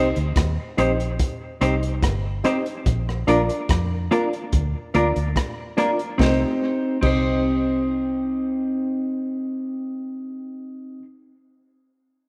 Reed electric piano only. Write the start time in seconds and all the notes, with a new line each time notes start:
Already playing: D#4 G4 C5 D#5
0.77 D#4 G4 C5 D#5
1.61 D#4 G4 C5 D#5
2.44 D#4 G4 C5 D#5
3.27 D4 F4 A#4 D5
4.11 D4 F4 A#4 D5
4.94 D4 F4 A#4 D5
5.77 D4 F4 A#4 D5
6.19 D#4 G4 C5 D#5
7.02 D#4 G4 C5 D#5